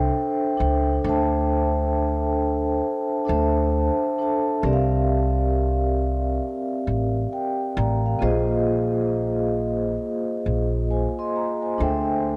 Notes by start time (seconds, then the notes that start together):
Already playing: D4 A4 C5 E5 G5
0.57 C#2 D4 A4 C5 E5 G5
1.04 D2 D4 A4 C5 E5
1.09 A5
3.25 D4 A4 C5 E5
3.29 D2 A5
4.18 D4 A4 C5 E5 A5
4.62 C2 C4 G4 A#4 D5
4.67 E5
4.73 F5
6.87 A1
7.33 A#4 G5
7.77 A1 D5 A#5
8.06 F5
8.19 A#1 A#3 F4 G#4 C5
8.23 D#5
10.46 A#1
10.91 C5 G#5
11.19 D#5 C6
11.36 A#5
11.62 C5 G#5
11.78 D2 D4 A4 C5 E5
11.83 G5